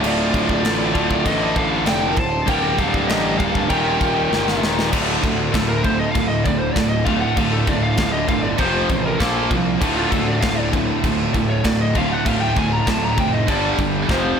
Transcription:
Already playing: distorted electric guitar D2 A2 D3 A3 F4
0.04 picked electric bass D1, lead electric guitar F4 D5, crash
0.34 picked electric bass D1, kick, crash
0.49 kick
0.63 picked electric bass A1, snare, crash
0.94 picked electric bass D1, distorted electric guitar A2 D3 A3 F4, kick, crash
0.98 distorted electric guitar D2
1.11 kick
1.26 picked electric bass A1, lead electric guitar A4 D#5, kick, crash
1.56 lead electric guitar A4 F5, kick, crash
1.86 picked electric bass F1, lead electric guitar D5 G5, snare, crash
2.10 lead electric guitar A#4 G5
2.16 picked electric bass D1, lead electric guitar C5 A5, kick, crash
2.47 picked electric bass D1, distorted electric guitar G2 D3 G3 A#3 D4 G4, lead electric guitar A#4 G5, kick, crash
2.77 picked electric bass D1, lead electric guitar A4 F5, kick, crash
2.94 kick
3.07 picked electric bass A1, lead electric guitar G4 D#5, snare, crash
3.38 picked electric bass D1, lead electric guitar A4 F5, kick, crash
3.55 kick
3.68 picked electric bass D#1, distorted electric guitar D#2 A#2 G3 G4, lead electric guitar A#4 G5, kick, crash
3.73 distorted electric guitar D#3
4.01 kick, crash
4.32 picked electric bass G1, snare
4.48 snare
4.62 picked electric bass D#1, snare
4.79 snare
4.93 picked electric bass D1, distorted electric guitar D2 A2 D3 A3 F4, kick, crash
5.23 picked electric bass D2, distorted electric guitar D2 A2, kick, crash
5.52 picked electric bass D1, distorted electric guitar D2 A2, lead electric guitar A4, kick, snare, crash
5.69 lead electric guitar A#4
5.84 distorted electric guitar D2 A2, lead electric guitar C5, kick, crash
5.99 lead electric guitar D#5
6.11 distorted electric guitar D2 A2, lead electric guitar F5, kick, crash
6.15 picked electric bass D1
6.28 lead electric guitar D#5
6.44 picked electric bass D1, distorted electric guitar D2 A2, lead electric guitar D5, kick, crash
6.59 lead electric guitar C5
6.73 picked electric bass D1, distorted electric guitar D2 A2, lead electric guitar D5, kick, snare, crash
6.89 lead electric guitar D#5
7.05 distorted electric guitar D2 A2 D3 A3 F4, lead electric guitar F5, kick, crash
7.21 lead electric guitar F#5
7.37 picked electric bass D1, distorted electric guitar D2 A2 D3 A3 F4, lead electric guitar F5, kick, crash
7.52 lead electric guitar A4
7.67 picked electric bass D1, distorted electric guitar D2 A2, lead electric guitar D5, kick, crash
7.83 lead electric guitar F5
7.97 picked electric bass D1, distorted electric guitar D2 A2, lead electric guitar F5, kick, snare, crash
8.12 lead electric guitar D#5
8.28 picked electric bass G1, distorted electric guitar D2 A2, lead electric guitar F5, kick, crash
8.42 lead electric guitar D5
8.58 picked electric bass F1, distorted electric guitar F2 C3 F3, lead electric guitar C5, kick, crash
8.89 picked electric bass A1, distorted electric guitar F2 C3, kick, crash
9.06 lead electric guitar A#4
9.18 picked electric bass A#1, distorted electric guitar A#2 F3 A#3, lead electric guitar A4, kick, snare, crash
9.51 picked electric bass C2, distorted electric guitar A#2 F3, kick, crash
9.81 picked electric bass D1, distorted electric guitar D2 A2 D3 A3, kick, crash
9.85 distorted electric guitar F4
9.97 lead electric guitar F4
10.10 distorted electric guitar D2 A2, picked electric bass D2, lead electric guitar A4, kick, crash
10.28 lead electric guitar D5
10.42 picked electric bass D1, distorted electric guitar D2 A2, lead electric guitar F5, kick, snare, crash
10.59 lead electric guitar D5
10.73 distorted electric guitar D2 A2, kick, crash
11.03 picked electric bass D1, distorted electric guitar D2 A2, kick, crash
11.34 picked electric bass D1, distorted electric guitar D2 A2, kick, crash
11.49 lead electric guitar C#5
11.64 picked electric bass D1, distorted electric guitar D2 A2, lead electric guitar D5, kick, snare, crash
11.82 lead electric guitar D#5
11.95 distorted electric guitar D2 A2 D3 A3 F4, lead electric guitar F5, kick, crash
12.13 lead electric guitar F#5
12.26 picked electric bass D1, distorted electric guitar D2 A2 D3 A3 F4, lead electric guitar F5, kick, crash
12.41 lead electric guitar G5
12.56 picked electric bass D1, distorted electric guitar D2 A2, lead electric guitar G#5, kick, crash
12.72 lead electric guitar A#5
12.87 picked electric bass D1, distorted electric guitar D2 A2, lead electric guitar A5, kick, snare, crash
13.05 lead electric guitar A#5
13.18 picked electric bass F1, distorted electric guitar D2 A2, lead electric guitar G5, kick, crash
13.33 lead electric guitar D#5
13.47 picked electric bass G1, distorted electric guitar G2 D3 G3, lead electric guitar D5, kick, crash
13.78 picked electric bass G1, distorted electric guitar G2 D3, kick, crash
14.09 picked electric bass F1, distorted electric guitar F2 C3 F3, lead electric guitar C5, kick, snare

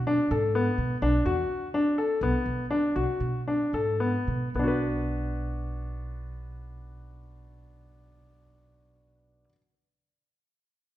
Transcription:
Already playing: upright bass B2
0.07 grand piano D4
0.31 upright bass G#2, grand piano A4
0.55 grand piano B3
0.78 upright bass B2
1.02 upright bass B1, grand piano D4
1.26 upright bass E2, grand piano F#4
1.74 grand piano D4
1.98 grand piano A4
2.21 upright bass B1, grand piano B3
2.46 upright bass B1
2.71 grand piano D4
2.96 upright bass B1, grand piano F#4
3.20 upright bass B2
3.48 grand piano D4
3.73 upright bass G#2, grand piano A4
4.00 grand piano B3
4.28 upright bass B2
4.54 upright bass B1, grand piano B3
4.59 grand piano D4
4.64 grand piano F#4 B4

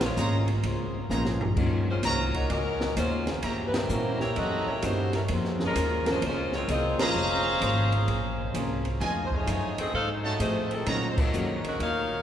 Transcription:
Already playing: upright bass A#1
0.01 saxophone section G#3 F4 C5 C#5, snare, ride
0.16 upright bass G#1, grand piano G#3 A#3 C4 C#4 F4, steel-string acoustic guitar A#3 C#4 G#4 C5, trumpet section G#4 C5 C#5 A#5, hi-hat pedal
0.48 ride
0.62 upright bass C#2, steel-string acoustic guitar A#3 C#4 G#4 C5, ride
0.94 muted upright bass stroke
1.09 upright bass A#1, grand piano G#3 A#3 C4 C#4 F4, steel-string acoustic guitar A#3 C#4 G#4 C5, trumpet section G#4 C5 C#5 A#5, snare, hi-hat pedal
1.25 snare
1.41 floor tom
1.56 upright bass D#2, steel-string acoustic guitar D#3 A#3 C#4 F#4, grand piano F#3 A#3 C#4 D#4 F4, kick, crash
1.87 saxophone section G#3 C#4 F4 C5, muted upright bass stroke
2.02 upright bass C2, steel-string acoustic guitar D#3 A#3 C#4 F#4, saxophone section G#3 C#4 F4 C5, trumpet section F#4 C#5 D#5 A#5, snare, hi-hat pedal, ride
2.34 saxophone section A#3 D#4 F#4 C#5, kick, ride
2.48 upright bass C#2, steel-string acoustic guitar D#3 A#3 C#4 F#4, saxophone section C#4 F#4 A#4 D5 D#5, ride
2.81 snare
2.96 upright bass D#2, steel-string acoustic guitar D#3 A#3 C#4 F#4, saxophone section G#3 C#4 F4 C5, hi-hat pedal, ride
3.27 saxophone section F3 A#3 C#4 G#4, snare, ride
3.42 upright bass G2, steel-string acoustic guitar E3 A#3 C#4 G4, trumpet section C#4 G4 E5 A#5, ride
3.67 saxophone section B4
3.74 saxophone section A#3 E4 G4 C5, snare, ride
3.89 upright bass A#2, steel-string acoustic guitar E3 A#3 C#4 G4, grand piano G3 A#3 C#4 E4 F#4, hi-hat pedal
4.20 saxophone section A#3 E4 G4 C#5, snare
4.36 upright bass F#2, steel-string acoustic guitar E3 A#3 C#4 G4, saxophone section C4 F#4 A4 D#5, ride
4.68 saxophone section A#3 E4 G4 C#5, muted upright bass stroke
4.82 upright bass G2, steel-string acoustic guitar E3 A#3 C#4 G4, grand piano G3 A#3 C#4 E4 F#4, saxophone section A3 D#4 F#4 C5, hi-hat pedal, ride
5.13 saxophone section G3 C#4 E4 A#4, snare, ride
5.28 upright bass F2, steel-string acoustic guitar A#3 C#4 G#4, ride
5.33 steel-string acoustic guitar C5
5.45 snare
5.59 grand piano F3 A#3 C4 C#4 G#4, snare
5.65 saxophone section G#3 C#4 F4 A#4
5.75 upright bass D#2, steel-string acoustic guitar A#3 C#4 G#4 C5, hi-hat pedal, ride
6.05 grand piano F3 A#3 C4 C#4 A#4, snare, ride
6.10 saxophone section G#3 C#4 F4 C5
6.21 upright bass C#2, steel-string acoustic guitar A#3 C#4 G#4 C5, ride
6.26 saxophone section G#3 C#4 F4 C5
6.53 saxophone section G#3 C4 F4 C#5, snare
6.68 upright bass C2, steel-string acoustic guitar A#3 C#4 G#4 C5, saxophone section C4 F4 G#4 D#5, hi-hat pedal, ride
6.98 grand piano F3 A#3 C4 C#4 F4, trumpet section C#4 G#4 C5 A#5, saxophone section C#4 G#4 C5 F5, muted upright bass stroke, snare, ride
7.14 upright bass F1, steel-string acoustic guitar A#3 C#4 G#4 C5
7.60 upright bass G#1, grand piano F3 A#3 C4 C#4 G#4, steel-string acoustic guitar A#3 C#4 G#4 C5, trumpet section G#4 C5 C#5 A#5, hi-hat pedal, ride
7.92 ride
8.07 upright bass A#1, steel-string acoustic guitar A#3 C#4 G#4 C5, ride
8.54 upright bass C2, grand piano F3 A#3 C4 C#4 G#4, steel-string acoustic guitar A#3 C#4 G#4 C5, hi-hat pedal, ride
8.85 ride
9.00 upright bass F2, steel-string acoustic guitar F3 A3 D#4 G#4, trumpet section F4 G#4 D#5 G#5, snare, ride
9.25 saxophone section C5
9.32 saxophone section A3 D#4 G#4 C#5, kick
9.46 upright bass F#2, steel-string acoustic guitar F3 A3 D#4 G#4, hi-hat pedal, ride
9.78 saxophone section C4 G#4 A4 D#5, muted upright bass stroke, ride
9.93 upright bass G#2, steel-string acoustic guitar F3 A3 D#4 G#4, saxophone section D#4 A4 C5 F5
10.24 saxophone section A3 D#4 F#4 C#5, trumpet section F4 A4 D#5 A5
10.39 upright bass A2, steel-string acoustic guitar F3 A3 D#4 G#4, grand piano F3 A3 C4 D#4 G#4, saxophone section A3 D#4 G#4 C5, hi-hat pedal, ride
10.71 saxophone section D#3 G#3 C4 A4, ride
10.86 upright bass A#2, steel-string acoustic guitar D#3 A#3 C#4 F#4, grand piano F#3 A#3 C#4 D#4 F4, trumpet section F#4 C#5 D#5 A#5, ride
11.10 saxophone section C5
11.18 saxophone section A#3 D#4 F#4 C#5, kick, crash
11.33 upright bass F#2, steel-string acoustic guitar D#3 A#3 C#4 F#4, hi-hat pedal
11.64 saxophone section C#4 F#4 A#4 D#5, muted upright bass stroke, ride
11.79 upright bass D#2, steel-string acoustic guitar D#3 A#3 C#4 F#4, saxophone section D#4 A#4 C#5 F5, ride

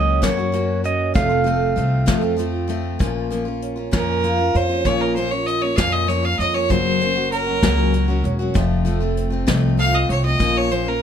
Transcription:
Already playing: upright bass C#2, steel-string acoustic guitar F#3 A#3 C#4 F#4, twelve-string acoustic guitar A#3, pedal steel guitar D#5
0.22 steel-string acoustic guitar F#2 C#3 F#3 A#3 C#4 F#4, upright bass F#2, pedal steel guitar C#5, kick, snare, closed hi-hat
0.37 steel-string acoustic guitar F#3 A#3 C#4 F#4
0.52 steel-string acoustic guitar F#3 A#3 C#4 F#4, closed hi-hat
0.84 steel-string acoustic guitar F#3 A#3 C#4 F#4, pedal steel guitar D#5, closed hi-hat
1.14 upright bass F1, steel-string acoustic guitar F2 C3 F3 A3 C4 F4, pedal steel guitar F5, kick, closed hi-hat
1.29 steel-string acoustic guitar F3 A3 C4 F4
1.44 steel-string acoustic guitar F3 A3 C4 F4, closed hi-hat
1.76 upright bass C2, steel-string acoustic guitar F3 A3 C4 F4, closed hi-hat
2.06 steel-string acoustic guitar F2 C3 F3 A3 C4 F4, upright bass F2, kick, snare, closed hi-hat
2.21 steel-string acoustic guitar F3 A3 C4 F4
2.37 steel-string acoustic guitar F3 A3 C4 F4, closed hi-hat
2.68 steel-string acoustic guitar F3 A3 C4 F4, closed hi-hat
2.99 upright bass A#1, steel-string acoustic guitar A#2 F3 A#3 C#4 F4, kick, closed hi-hat
3.30 steel-string acoustic guitar F3 A#3 C#4 F4, closed hi-hat
3.45 steel-string acoustic guitar A#3 C#4 F4
3.62 twelve-string acoustic guitar C#4, closed hi-hat
3.76 steel-string acoustic guitar A#3 C#4 F4
3.91 upright bass F2, steel-string acoustic guitar A#2 F3 A#3 C#4 F4, fiddle A#4, kick, snare, closed hi-hat
4.22 steel-string acoustic guitar F3 A#3 C#4 F4, closed hi-hat
4.38 steel-string acoustic guitar A#3 C#4 F4
4.55 upright bass F2, twelve-string acoustic guitar C#4, fiddle C5, closed hi-hat
4.69 steel-string acoustic guitar A#3 C#4 F4
4.85 upright bass A#1, steel-string acoustic guitar A#2 F3 A#3 C#4 F4, fiddle C#5, kick, closed hi-hat
5.01 fiddle A#4
5.16 steel-string acoustic guitar F3 A#3 C#4 F4, fiddle C5, closed hi-hat
5.31 steel-string acoustic guitar A#3 C#4 F4, fiddle C#5
5.46 twelve-string acoustic guitar C#4, fiddle D#5, closed hi-hat
5.61 steel-string acoustic guitar A#3 C#4 F4, fiddle C#5
5.76 upright bass F2, steel-string acoustic guitar A#2 F3 A#3 C#4 F4, fiddle F5, kick, snare, closed hi-hat
5.92 fiddle D#5
6.07 steel-string acoustic guitar F3 A#3 C#4 F4, fiddle C#5, closed hi-hat
6.23 steel-string acoustic guitar A#3 C#4 F4, fiddle F5
6.39 upright bass F2, twelve-string acoustic guitar C#4, fiddle D#5, closed hi-hat
6.54 steel-string acoustic guitar A#3 C#4 F4, fiddle C#5
6.69 upright bass F#1, steel-string acoustic guitar F#2 C#3 F#3 A#3 C#4 F#4, fiddle C5, kick, closed hi-hat
7.00 steel-string acoustic guitar F#3 A#3 C#4 F#4, closed hi-hat
7.15 steel-string acoustic guitar F#3 A#3 C#4 F#4
7.32 twelve-string acoustic guitar C#4, fiddle A#4, closed hi-hat
7.46 steel-string acoustic guitar F#3 A#3 C#4 F#4
7.62 upright bass C#2, steel-string acoustic guitar F#2 C#3 F#3 A#3 C#4 F#4, kick, snare, closed hi-hat
7.93 steel-string acoustic guitar F#3 A#3 C#4 F#4, closed hi-hat
8.08 steel-string acoustic guitar F#3 A#3 C#4 F#4
8.24 upright bass E1, twelve-string acoustic guitar C#4, closed hi-hat
8.39 steel-string acoustic guitar F#3 A#3 C#4 F#4
8.54 upright bass F1, steel-string acoustic guitar F2 C3 F3 A3 C4 F4, kick, closed hi-hat
8.85 steel-string acoustic guitar F3 A3 C4 F4, closed hi-hat
9.00 steel-string acoustic guitar F3 A3 C4 F4
9.17 twelve-string acoustic guitar C4, closed hi-hat
9.30 steel-string acoustic guitar F3 A3 C4 F4
9.47 upright bass C2, steel-string acoustic guitar F2 C3 F3 A3 C4 F4, kick, snare, closed hi-hat
9.78 steel-string acoustic guitar F3 A3 C4 F4, fiddle F5, closed hi-hat
9.92 steel-string acoustic guitar F3 A3 C4 F4, fiddle D#5
10.09 upright bass C2, twelve-string acoustic guitar C4, fiddle C#5, closed hi-hat
10.24 steel-string acoustic guitar F3 A3 C4 F4, fiddle D#5
10.39 upright bass A#1, steel-string acoustic guitar A#2 F3 A#3 C#4 F4, kick, closed hi-hat
10.57 fiddle C#5
10.69 steel-string acoustic guitar F3 A#3 C#4 F4, fiddle C5, closed hi-hat
10.85 steel-string acoustic guitar A#3 C#4 F4, fiddle A#4

